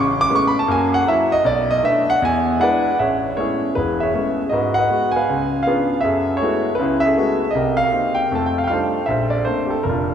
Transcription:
0.00 0.26 A1 medium
0.00 0.26 C#3 medium
0.00 0.19 C#6 medium
0.21 0.32 D6 loud
0.30 0.57 G#3 medium
0.30 0.57 A3 medium
0.30 0.57 B3 medium
0.30 0.58 C#4 medium
0.35 0.46 C#6 loud
0.47 0.58 B5 medium
0.59 0.70 A5 medium
0.68 1.01 F#2 medium
0.68 1.02 A#3 medium
0.68 0.95 G#5 medium
0.94 1.07 F#5 loud
1.07 1.33 F#3 medium
1.07 1.33 A#3 medium
1.07 1.34 E4 medium
1.07 1.32 E5 medium
1.32 1.45 D#5 loud
1.45 1.78 B1 medium
1.45 1.70 D5 medium
1.71 1.83 D#5 loud
1.83 2.10 A3 medium
1.83 2.10 B3 medium
1.83 2.10 D4 medium
1.83 2.09 E5 medium
2.10 2.22 F#5 loud
2.22 2.56 E2 medium
2.22 2.91 G#5 loud
2.60 2.87 G#3 medium
2.60 2.88 D4 medium
2.60 2.87 E4 medium
2.60 2.98 B4 medium
2.60 2.98 D5 medium
2.60 3.01 F#5 medium
2.99 3.33 A1 medium
2.99 3.38 G#4 medium
2.99 3.35 C#5 medium
2.99 3.39 E5 medium
3.37 3.64 G#3 soft
3.37 3.65 A3 soft
3.37 3.65 B3 soft
3.37 3.65 C#4 medium
3.37 3.77 E4 medium
3.37 3.77 G#4 medium
3.37 3.73 C#5 medium
3.75 4.10 E1 medium
3.75 4.50 E4 soft
3.75 4.01 G#4 soft
3.75 4.02 B4 medium
4.00 4.50 G#4 medium
4.00 4.50 C#5 soft
4.00 4.48 E5 medium
4.14 4.41 G#3 soft
4.14 4.41 A3 soft
4.14 4.41 B3 soft
4.14 4.41 C#4 medium
4.49 4.85 G#2 medium
4.49 4.89 F#4 medium
4.49 4.74 D#5 medium
4.54 4.77 B4 medium
4.74 5.11 F#5 medium
4.79 5.15 B4 medium
4.79 5.25 D#5 medium
4.90 5.17 G#3 soft
4.90 5.17 B3 soft
4.90 5.17 F#4 medium
5.12 5.66 G#5 medium
5.16 5.66 B4 medium
5.16 5.61 F5 medium
5.29 5.61 C#2 medium
5.63 5.93 B3 medium
5.63 5.99 F5 medium
5.67 5.93 C#4 soft
5.67 5.93 D4 soft
5.67 5.93 F4 medium
5.67 6.02 G#4 medium
5.67 6.02 B4 medium
6.01 6.75 G#4 medium
6.01 6.41 E5 medium
6.05 6.37 F#2 medium
6.05 6.41 A4 medium
6.37 6.74 C#5 medium
6.41 6.68 G#3 soft
6.41 6.68 A3 soft
6.41 6.68 B3 soft
6.41 6.68 E4 soft
6.41 6.68 F#4 medium
6.41 7.04 A4 medium
6.75 7.12 C#3 medium
6.75 7.00 B4 medium
6.79 7.12 C#2 medium
6.79 7.16 E4 medium
6.79 7.04 G#4 medium
7.00 7.55 E5 loud
7.05 7.52 G#4 medium
7.05 7.52 A4 medium
7.17 7.43 G#3 soft
7.17 7.44 A3 soft
7.17 7.44 B3 soft
7.17 7.44 E4 soft
7.17 7.44 F#4 medium
7.51 7.76 D#5 medium
7.55 7.88 C2 medium
7.55 8.28 G4 medium
7.55 7.81 A#4 medium
7.77 8.18 F5 medium
7.83 8.29 A#4 medium
7.91 8.19 A#3 soft
7.91 8.19 C4 soft
7.91 8.19 D#4 soft
8.15 8.31 G5 medium
8.31 8.65 F2 medium
8.31 8.65 A3 medium
8.31 8.47 A5 medium
8.46 8.58 G5 medium
8.58 8.64 F5 medium
8.64 9.09 F5 medium
8.64 8.70 G5 medium
8.70 8.97 G3 soft
8.70 8.97 A3 soft
8.70 8.97 D4 soft
8.70 8.97 D#4 soft
8.70 8.97 F4 medium
8.70 9.08 A4 medium
8.70 9.08 C5 medium
9.06 9.42 A#1 medium
9.06 9.31 E5 medium
9.11 9.69 A4 medium
9.11 9.43 C5 medium
9.30 9.45 D5 medium
9.45 9.74 A3 soft
9.45 9.74 A#3 soft
9.45 9.74 C4 soft
9.45 9.74 D4 soft
9.45 9.64 C5 medium
9.67 9.73 G4 soft
9.67 9.84 A4 medium
9.83 10.14 F1 medium
9.83 10.14 A#4 medium
9.89 10.14 D4 medium
9.89 10.14 F4 medium

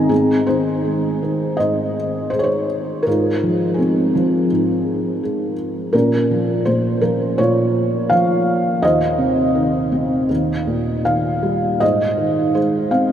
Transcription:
0.00 0.09 G#2 soft
0.00 0.13 D#3 medium
0.00 0.12 C4 medium
0.00 0.13 D#5 medium
0.00 0.13 G#5 medium
0.00 0.13 A#5 medium
0.09 1.58 G#2 soft
0.09 1.57 C4 soft
0.09 0.45 G#4 medium
0.47 1.21 D#3 soft
0.47 1.94 D#4 soft
0.47 1.56 C5 medium
0.85 2.29 G#3 soft
1.23 2.66 D#3 soft
1.57 3.02 G#2 soft
1.57 2.29 C5 medium
1.57 2.34 D#5 medium
2.30 3.04 G#3 soft
2.30 2.39 C5 medium
2.39 2.47 C#5 medium
2.44 3.06 C5 medium
3.03 3.79 A#4 medium
3.07 4.51 G#2 soft
3.07 4.47 F4 soft
3.43 4.14 F3 soft
3.74 5.52 G#4 soft
3.78 5.20 G#3 soft
3.78 5.54 C4 soft
4.15 5.55 F3 soft
4.52 5.91 G#2 soft
5.23 5.92 G#3 soft
5.93 6.65 A#2 medium
5.93 7.35 C#4 soft
5.93 6.61 A#4 medium
6.31 7.01 F3 soft
6.65 7.38 A#2 soft
6.65 6.99 C5 medium
7.01 8.10 F3 soft
7.01 7.39 A#4 medium
7.38 8.79 A#2 soft
7.38 8.79 F4 medium
7.38 8.12 C#5 medium
8.10 8.81 F3 soft
8.10 8.84 F5 medium
8.82 10.26 D#2 medium
8.82 11.02 C5 medium
8.82 11.01 D#5 medium
9.18 10.26 C3 soft
9.55 10.27 D#3 soft
9.92 10.28 C4 soft
10.29 11.77 D#2 soft
10.67 11.77 A#2 soft
11.05 11.79 D#3 soft
11.05 11.83 F5 medium
11.43 11.79 G3 soft
11.80 13.12 G#2 soft
11.80 12.53 C5 soft
11.80 12.57 D#5 medium
12.18 13.12 D#3 soft
12.54 13.12 G#3 soft
12.54 12.89 C5 medium
12.91 13.12 C4 soft
12.91 13.12 F5 medium

